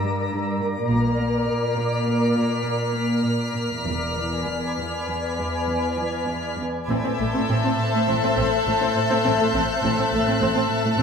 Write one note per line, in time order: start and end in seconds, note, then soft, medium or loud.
0.00 0.86 G2 soft
0.00 0.21 G3 soft
0.00 3.81 A#4 soft
0.00 3.81 D5 soft
0.00 0.58 A#5 soft
0.00 0.86 A#5 medium
0.00 0.58 E6 soft
0.33 0.50 G2 soft
0.62 0.79 G2 soft
0.89 1.45 A#1 soft
0.89 3.86 A#2 soft
0.89 1.08 A#2 soft
0.89 3.85 D6 soft
0.89 6.54 F6 soft
1.19 1.36 A#3 soft
1.48 1.66 A#2 soft
1.48 6.54 B6 soft
1.77 1.95 A#2 soft
2.07 2.24 A#2 soft
2.37 2.54 A#2 soft
2.65 2.83 A#2 soft
2.95 3.13 A#3 soft
3.25 3.43 A#2 soft
3.55 3.73 A#2 soft
3.85 4.42 E1 soft
3.85 6.64 E2 soft
3.85 4.04 E2 soft
3.85 6.88 B4 soft
3.85 6.84 D5 soft
3.85 6.88 G#5 soft
4.17 4.35 E3 soft
4.47 4.65 E2 soft
4.78 4.96 E2 soft
5.08 5.26 E2 soft
5.39 5.57 E2 soft
5.69 5.87 E2 soft
6.00 6.17 E3 soft
6.29 6.47 E2 soft
6.59 6.77 E2 soft
6.88 6.95 A1 soft
6.88 6.95 A2 soft
6.88 7.07 A2 soft
6.88 6.96 C4 soft
6.88 9.79 A4 soft
6.88 9.79 C5 soft
6.88 9.78 E5 soft
6.88 9.79 E5 soft
6.88 9.78 A5 soft
6.88 11.03 E6 soft
6.88 10.16 G6 soft
7.04 7.10 A2 soft
7.04 7.10 C4 soft
7.19 7.26 A1 soft
7.19 7.25 A2 soft
7.19 7.25 A3 soft
7.19 7.37 A3 soft
7.34 7.40 A2 soft
7.34 7.40 C4 soft
7.49 7.55 A1 soft
7.49 7.55 A2 soft
7.49 7.67 A2 soft
7.49 7.55 C4 soft
7.49 10.16 F#6 soft
7.64 7.70 A2 soft
7.64 7.70 C4 soft
7.79 7.96 A2 soft
7.93 7.99 A2 soft
7.93 8.00 A3 soft
8.07 8.14 A1 soft
8.07 8.25 A2 soft
8.07 8.14 A2 soft
8.07 8.13 C4 soft
8.23 8.29 A2 soft
8.23 8.28 C4 soft
8.36 8.44 A1 soft
8.36 8.43 A2 soft
8.36 8.55 A3 soft
8.36 8.42 C4 soft
8.65 8.73 A1 soft
8.65 8.83 A2 soft
8.65 8.72 A2 soft
8.65 8.71 A3 soft
8.81 8.87 A2 soft
8.81 8.86 C4 soft
8.95 9.13 A2 soft
9.09 9.17 A2 soft
9.09 9.15 C4 soft
9.25 9.32 A1 soft
9.25 9.42 A2 soft
9.25 9.31 A2 soft
9.25 9.30 C4 soft
9.40 9.45 A2 soft
9.40 9.45 A3 soft
9.54 9.60 A1 soft
9.54 9.71 A2 soft
9.54 9.60 A2 soft
9.54 9.59 C4 soft
9.83 9.89 A1 soft
9.83 10.00 A2 soft
9.83 9.89 A2 soft
9.83 9.89 C4 soft
9.83 11.03 A4 soft
9.83 11.03 C5 soft
9.83 11.03 E5 medium
9.83 11.03 E5 soft
9.83 11.03 A5 soft
9.98 10.04 A2 soft
9.98 10.04 C4 soft
10.12 10.18 A1 soft
10.12 10.18 A2 soft
10.12 10.29 A3 soft
10.12 10.18 A3 soft
10.16 11.03 F#6 soft
10.26 10.32 A2 soft
10.26 10.33 C4 soft
10.40 10.47 A1 soft
10.40 10.46 A2 soft
10.40 10.58 A2 soft
10.40 10.46 C4 soft
10.55 10.61 A2 soft
10.55 10.61 C4 soft
10.70 10.87 A2 soft
10.85 10.90 A2 soft
10.85 10.91 A3 soft
10.98 11.03 A1 soft
10.98 11.03 A2 soft
10.98 11.03 C4 soft